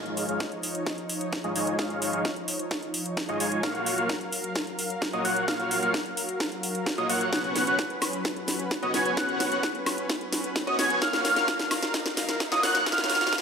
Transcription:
Already playing: analog synth pad F3 D#4 C#5, supersaw synth G#3 D#4 F4 C#5 F5, analog synth lead F6
0.06 closed hi-hat
0.17 open hi-hat
0.29 supersaw synth G#3 D#4 F4 C#5 F5, analog synth lead F6, closed hi-hat
0.40 kick, snare, closed hi-hat
0.52 closed hi-hat
0.63 open hi-hat
0.75 closed hi-hat
0.86 kick, snare, closed hi-hat
0.98 closed hi-hat
1.09 open hi-hat
1.21 closed hi-hat
1.33 kick, snare, closed hi-hat
1.44 supersaw synth G#3 D#4 F4 C#5 D#5, analog synth lead D#6, closed hi-hat
1.56 supersaw synth G#3 D#4 F4 C#5 G#5, analog synth lead G#6, open hi-hat
1.67 closed hi-hat
1.79 supersaw synth G#3 D#4 F4 F5, analog synth lead F6, kick, snare, closed hi-hat
1.90 closed hi-hat
2.02 open hi-hat
2.13 supersaw synth G#3 D#4 F4 C#5 F5, analog synth lead F6, closed hi-hat
2.25 kick, snare, closed hi-hat
2.36 closed hi-hat
2.48 open hi-hat
2.59 closed hi-hat
2.71 kick, snare, closed hi-hat
2.82 closed hi-hat
2.94 open hi-hat
3.06 closed hi-hat
3.17 kick, snare, closed hi-hat
3.29 supersaw synth G#3 D#4 F4 C#5 D#5, analog synth lead D#6, closed hi-hat
3.40 supersaw synth G#3 D#4 F4 C#5 G#5, analog synth lead G#6, open hi-hat
3.52 closed hi-hat
3.63 analog synth pad F#3 A#4 F5, supersaw synth A#3 F4 F#4 C#5, analog synth lead F6, kick, snare, closed hi-hat
3.75 closed hi-hat
3.86 open hi-hat
3.98 supersaw synth A#3 F4 F#4 C#5 F5, analog synth lead F6, closed hi-hat
4.09 kick, snare, closed hi-hat
4.21 closed hi-hat
4.32 open hi-hat
4.44 closed hi-hat
4.55 kick, snare, closed hi-hat
4.67 closed hi-hat
4.79 open hi-hat
4.90 closed hi-hat
5.02 kick, snare, closed hi-hat
5.13 supersaw synth A#3 F4 F#4 C#5 D#5, analog synth lead D#6, closed hi-hat
5.25 supersaw synth A#3 F4 F#4 C#5 F#5, analog synth lead F#6, open hi-hat
5.36 closed hi-hat
5.48 supersaw synth A#3 F4 C#5 F5, analog synth lead F6, kick, snare, closed hi-hat
5.60 closed hi-hat
5.71 open hi-hat
5.82 supersaw synth A#3 F4 F#4 C#5 F5, analog synth lead F6, closed hi-hat
5.94 kick, snare, closed hi-hat
6.06 closed hi-hat
6.17 open hi-hat
6.29 closed hi-hat
6.40 kick, snare, closed hi-hat
6.52 closed hi-hat
6.63 open hi-hat
6.75 closed hi-hat
6.86 kick, snare, closed hi-hat
6.98 supersaw synth A#3 F4 F#4 C#5 D#5, analog synth lead D#6, closed hi-hat
7.09 supersaw synth A#3 F4 F#4 C#5 F#5, analog synth lead F#6, open hi-hat
7.21 closed hi-hat
7.32 supersaw synth B3 C#4 F#4 C#5 F#5, analog synth pad C#4 B4, analog synth lead F#6, kick, snare, closed hi-hat, riser
7.44 closed hi-hat
7.56 snare, open hi-hat
7.67 supersaw synth B3 C#4 F#4 C#5 F#5, analog synth lead F#6, closed hi-hat
7.79 kick, snare, closed hi-hat
7.90 closed hi-hat
8.02 snare, open hi-hat, high woodblock
8.13 closed hi-hat
8.25 kick, snare, closed hi-hat
8.36 closed hi-hat
8.48 snare, open hi-hat
8.59 closed hi-hat
8.71 kick, snare, closed hi-hat
8.82 supersaw synth B3 C#4 F#4 C#5 D#5, analog synth lead D#6, closed hi-hat
8.94 supersaw synth B3 C#4 F#4 C#5 G#5, analog synth lead G#6, snare, open hi-hat
9.06 closed hi-hat
9.17 supersaw synth B3 C#4 F#4 C#5 F#5, analog synth lead F#6, kick, snare, closed hi-hat
9.29 closed hi-hat
9.40 snare, open hi-hat
9.52 supersaw synth B3 C#4 F#4 C#5 F#5, analog synth lead F#6, closed hi-hat
9.63 kick, snare, closed hi-hat
9.75 closed hi-hat
9.86 snare, open hi-hat, high woodblock
9.98 closed hi-hat
10.09 kick, snare, closed hi-hat
10.21 closed hi-hat
10.32 snare, open hi-hat
10.44 closed hi-hat
10.56 kick, snare, closed hi-hat
10.67 supersaw synth B3 C#4 F#4 C#5 D#5, analog synth lead D#6, closed hi-hat
10.79 supersaw synth B3 C#4 F#4 C#5 G#5, analog synth lead G#6, snare, open hi-hat
10.90 closed hi-hat
11.02 supersaw synth A#3 F4 F#4 C#5 F5, analog synth pad A#4 F5, analog synth lead F6, kick, snare, closed hi-hat
11.13 snare, closed hi-hat
11.25 snare, open hi-hat
11.36 supersaw synth A#3 F4 F#4 C#5 F5, analog synth lead F6, snare, closed hi-hat
11.48 kick, snare, closed hi-hat
11.59 snare, closed hi-hat
11.71 snare, open hi-hat, high woodblock
11.83 snare, closed hi-hat
11.94 kick, snare, closed hi-hat
12.06 snare, closed hi-hat
12.17 snare, open hi-hat
12.29 snare, closed hi-hat
12.40 kick, snare, closed hi-hat
12.52 supersaw synth A#3 F4 F#4 C#5 D#5, analog synth lead D#6, snare, closed hi-hat
12.63 supersaw synth A#3 F4 F#4 C#5 F#5, analog synth lead F#6, snare, open hi-hat
12.75 snare, closed hi-hat
12.86 supersaw synth A#3 F4 F#4 C#5 F5, analog synth lead F6, kick, snare, closed hi-hat
12.92 snare
12.98 snare, closed hi-hat
13.04 snare
13.10 snare, open hi-hat
13.15 snare
13.21 supersaw synth A#3 F4 F#4 C#5 F5, analog synth lead F6, snare, closed hi-hat
13.27 snare
13.33 kick, snare, closed hi-hat
13.38 snare

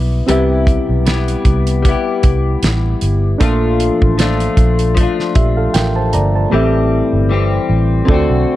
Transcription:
Already playing: fingered electric bass B1, clean electric guitar G3 B3 E4 B4 D5, reed electric piano E5
0.27 fingered electric bass C2, clean electric guitar C3 G3 B3 E4 G4, reed electric piano C4 G4 B4, closed hi-hat
0.31 reed electric piano E5
0.67 kick, closed hi-hat
0.89 fingered electric bass B1
1.06 clean electric guitar G3 B3 E4 G4, snare, closed hi-hat
1.28 closed hi-hat
1.45 fingered electric bass C2, kick, closed hi-hat
1.67 closed hi-hat
1.83 clean electric guitar G3 B3, kick, closed hi-hat
1.89 clean electric guitar E4 G4
2.23 fingered electric bass C2, kick, closed hi-hat
2.63 fingered electric bass A1, snare, closed hi-hat
3.01 fingered electric bass G1, closed hi-hat
3.38 fingered electric bass A#1, clean electric guitar A#2 F3 A3 D4, reed electric piano A#3 D4 A4, kick, closed hi-hat
3.43 clean electric guitar F4, reed electric piano F5
3.80 closed hi-hat
4.02 fingered electric bass A1, kick
4.18 clean electric guitar F3 A3 D4 F4, snare, closed hi-hat
4.40 closed hi-hat
4.57 fingered electric bass A#1, kick, closed hi-hat
4.79 closed hi-hat
4.95 clean electric guitar F3 A3, kick, closed hi-hat
5.00 clean electric guitar D4 F4
5.20 snare
5.35 fingered electric bass A#1, reed electric piano G4 E5, kick, closed hi-hat
5.57 reed electric piano A4 F5
5.74 fingered electric bass A1, reed electric piano A#4 G5, snare, closed hi-hat
5.96 reed electric piano C5 A5
6.13 fingered electric bass G1, reed electric piano D5 A#5, closed hi-hat
6.35 reed electric piano C5 A5
6.50 fingered electric bass A1, clean electric guitar A2 E3 G3 C4, reed electric piano B3 G4 A4
6.54 reed electric piano C4 E5, clean electric guitar G4
7.13 fingered electric bass G1
7.29 clean electric guitar E3 G3 C4
7.33 clean electric guitar G4
7.69 fingered electric bass A1
8.05 fingered electric bass D2, clean electric guitar D3 A3, reed electric piano C4 F4 A4, kick
8.10 clean electric guitar C4 F#4, reed electric piano F#4 D5
8.30 fingered electric bass B1

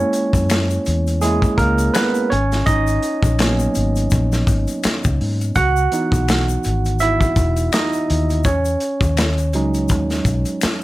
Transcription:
Already playing: tine electric piano G#3 A#3 C#4 E4 C#5
0.13 closed hi-hat, shaker
0.33 fingered electric bass F#2, kick, closed hi-hat, shaker
0.50 finger snap, snare, closed hi-hat, shaker
0.70 closed hi-hat, shaker
0.85 fingered electric bass E2, closed hi-hat, shaker
1.07 closed hi-hat, shaker
1.21 tine electric piano G#3 A#3 E4 G#4, closed hi-hat, shaker
1.42 kick, closed hi-hat, shaker
1.58 fingered electric bass C#2, tine electric piano A#3 A#4, kick, closed hi-hat, shaker
1.78 closed hi-hat, shaker
1.94 tine electric piano B3 B4, finger snap, snare, closed hi-hat, shaker
2.15 closed hi-hat, shaker
2.30 fingered electric bass G#1, tine electric piano C#4 C#5, closed hi-hat
2.52 snare, closed hi-hat, shaker
2.66 fingered electric bass G#1, tine electric piano D#4 D#5, kick, closed hi-hat, shaker
2.87 closed hi-hat, shaker
3.02 closed hi-hat, shaker
3.23 fingered electric bass A#1, kick, closed hi-hat, shaker
3.39 tine electric piano F#3 A#3 B3 C#4, finger snap, snare, closed hi-hat, shaker
3.59 closed hi-hat, shaker
3.75 fingered electric bass G#1, closed hi-hat, shaker
3.96 closed hi-hat, shaker
4.10 fingered electric bass A#1, kick, closed hi-hat, shaker
4.32 snare, closed hi-hat, shaker
4.47 fingered electric bass G#1, kick, closed hi-hat, shaker
4.67 closed hi-hat, shaker
4.83 finger snap, muted fingered electric bass stroke, snare, closed hi-hat, shaker
5.04 fingered electric bass C#2, kick, shaker
5.21 fingered electric bass G#2, open hi-hat
5.41 closed hi-hat, shaker
5.55 fingered electric bass C#2, tine electric piano F#4 F#5, kick, closed hi-hat, shaker
5.76 shaker
5.92 tine electric piano E3 B3 D#4, closed hi-hat, shaker
6.12 fingered electric bass B1, kick, closed hi-hat, shaker
6.28 finger snap, snare, closed hi-hat, shaker
6.49 shaker
6.64 fingered electric bass G#1, closed hi-hat, shaker
6.85 closed hi-hat, shaker
6.99 tine electric piano E4 E5, closed hi-hat, shaker
7.21 kick, closed hi-hat, shaker
7.36 fingered electric bass E1, kick, closed hi-hat, shaker
7.56 closed hi-hat, shaker
7.72 tine electric piano D#4 D#5, finger snap, snare, closed hi-hat, shaker
7.93 closed hi-hat, shaker
8.10 fingered electric bass D#2, closed hi-hat
8.30 closed hi-hat, shaker
8.44 fingered electric bass E2, tine electric piano C#4 C#5, kick, closed hi-hat, shaker
8.65 closed hi-hat, shaker
8.80 closed hi-hat, shaker
9.01 fingered electric bass D#2, kick, closed hi-hat, shaker
9.17 finger snap, snare, closed hi-hat, shaker
9.38 closed hi-hat, shaker
9.53 fingered electric bass C#2, tine electric piano F#3 G#3 C#4 D#4, closed hi-hat, shaker
9.74 closed hi-hat, shaker
9.89 fingered electric bass D#2, kick, closed hi-hat, shaker
10.10 snare, closed hi-hat, shaker
10.25 fingered electric bass B1, kick, closed hi-hat, shaker
10.45 closed hi-hat, shaker
10.61 finger snap, muted fingered electric bass stroke, snare, closed hi-hat, shaker

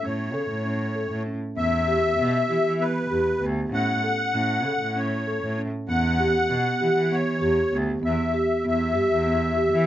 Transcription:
0.03 cello A2, marimba C#4, accordion C#5
0.34 cello C#3, marimba A4
0.50 cello A2
0.64 marimba C#4
0.95 marimba A4
1.10 cello A2
1.26 marimba C#4
1.57 cello E2, marimba B3, accordion E5
1.88 marimba G4
2.19 cello B2, marimba B3
2.49 cello E3, marimba G4
2.64 cello E3
2.80 marimba B3, accordion B4
3.11 cello E2, marimba G4
3.41 cello D2, marimba B3
3.72 cello A2, marimba C#4, accordion F#5
4.04 marimba A4
4.34 cello A2, marimba C#4
4.64 cello C#3, marimba A4
4.81 cello A2
4.96 marimba C#4, accordion C#5
5.27 marimba A4
5.42 cello A2
5.58 marimba C#4
5.88 cello E2, marimba B3, accordion F#5
6.19 marimba G4
6.50 cello B2, marimba B3
6.81 cello E3, marimba G4
6.96 cello E3
7.12 marimba B3, accordion C#5
7.41 cello E2, marimba G4
7.73 cello D2, marimba B3
8.03 cello E2, marimba B3, accordion E5
8.34 marimba G4
8.65 cello E2, marimba B3, accordion E5
8.95 cello G2, marimba G4
9.11 cello E2
9.27 marimba B3
9.57 marimba G4
9.72 cello E3

